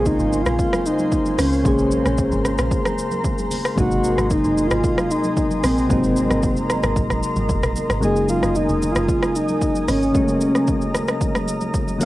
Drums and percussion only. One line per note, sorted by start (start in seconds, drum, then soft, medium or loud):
0.05 kick medium
0.05 low conga medium
0.05 shaker medium
0.19 high conga medium
0.19 shaker soft
0.33 low conga medium
0.33 shaker medium
0.46 cross-stick loud
0.46 shaker medium
0.59 kick loud
0.59 shaker medium
0.73 cross-stick loud
0.73 high conga medium
0.73 shaker soft
0.86 shaker loud
0.99 high conga medium
0.99 shaker medium
1.12 kick loud
1.12 low conga medium
1.12 shaker medium
1.26 high conga medium
1.26 shaker medium
1.39 cross-stick medium
1.39 open hi-hat medium
1.39 low conga medium
1.39 shaker loud
1.53 shaker medium
1.65 kick loud
1.65 shaker medium
1.79 shaker medium
1.91 high conga medium
1.91 shaker loud
2.06 cross-stick medium
2.06 shaker medium
2.18 kick medium
2.18 low conga medium
2.18 shaker medium
2.32 high conga medium
2.32 shaker soft
2.45 cross-stick medium
2.45 low conga medium
2.45 shaker medium
2.58 cross-stick loud
2.58 shaker medium
2.71 kick loud
2.71 shaker medium
2.85 cross-stick loud
2.85 high conga medium
2.85 shaker soft
2.98 shaker loud
3.11 high conga medium
3.11 shaker medium
3.24 kick loud
3.24 low conga medium
3.24 shaker medium
3.38 high conga medium
3.38 shaker medium
3.51 open hi-hat medium
3.51 low conga medium
3.51 shaker loud
3.65 cross-stick loud
3.65 shaker medium
3.78 kick loud
3.78 shaker medium
3.91 shaker medium
4.04 high conga medium
4.04 shaker loud
4.18 cross-stick medium
4.18 shaker medium
4.30 kick medium
4.30 low conga medium
4.30 shaker medium
4.44 high conga medium
4.44 shaker soft
4.57 low conga medium
4.57 shaker medium
4.71 cross-stick loud
4.71 shaker medium
4.84 kick loud
4.84 shaker medium
4.98 cross-stick loud
4.98 high conga medium
4.98 shaker soft
5.11 shaker loud
5.24 high conga medium
5.24 shaker medium
5.37 kick loud
5.37 low conga medium
5.37 shaker medium
5.51 high conga medium
5.51 shaker medium
5.64 cross-stick loud
5.64 open hi-hat medium
5.64 low conga medium
5.64 shaker loud
5.78 shaker medium
5.90 kick loud
5.90 shaker medium
6.04 shaker medium
6.16 high conga medium
6.16 shaker medium
6.30 cross-stick medium
6.30 shaker medium
6.43 kick medium
6.43 low conga medium
6.43 shaker medium
6.57 high conga medium
6.57 shaker soft
6.70 cross-stick loud
6.70 low conga medium
6.70 shaker medium
6.83 cross-stick loud
6.83 shaker medium
6.96 kick loud
6.96 shaker medium
7.10 cross-stick medium
7.10 high conga medium
7.10 shaker soft
7.23 shaker loud
7.36 high conga medium
7.36 shaker medium
7.49 kick loud
7.49 low conga medium
7.49 shaker medium
7.63 cross-stick loud
7.63 high conga medium
7.63 shaker medium
7.76 low conga medium
7.76 shaker loud
7.90 cross-stick loud
7.90 shaker medium
8.03 shaker medium
8.16 shaker medium
8.29 high conga medium
8.29 shaker loud
8.43 cross-stick medium
8.43 shaker medium
8.55 low conga medium
8.55 shaker medium
8.69 high conga medium
8.69 shaker soft
8.82 low conga medium
8.82 shaker medium
8.95 cross-stick loud
8.95 shaker medium
9.09 kick loud
9.09 shaker medium
9.23 cross-stick medium
9.23 high conga medium
9.23 shaker soft
9.35 shaker loud
9.48 high conga medium
9.48 shaker medium
9.62 kick loud
9.62 low conga medium
9.62 shaker medium
9.75 high conga medium
9.75 shaker medium
9.88 cross-stick medium
9.88 open hi-hat medium
9.88 low conga medium
9.88 shaker loud
10.02 shaker medium
10.15 kick loud
10.15 shaker medium
10.28 shaker medium
10.41 high conga medium
10.41 shaker medium
10.55 cross-stick medium
10.55 shaker medium
10.67 kick medium
10.67 low conga medium
10.67 shaker medium
10.81 high conga medium
10.81 shaker soft
10.94 cross-stick loud
10.94 low conga medium
10.94 shaker medium
11.08 cross-stick loud
11.08 shaker medium
11.21 kick loud
11.21 shaker medium
11.35 cross-stick loud
11.35 high conga medium
11.35 shaker medium
11.48 shaker loud
11.61 high conga medium
11.61 shaker medium
11.74 kick loud
11.74 low conga medium
11.74 shaker medium
11.88 high conga medium
11.88 shaker medium
12.01 open hi-hat medium
12.01 low conga medium
12.01 shaker loud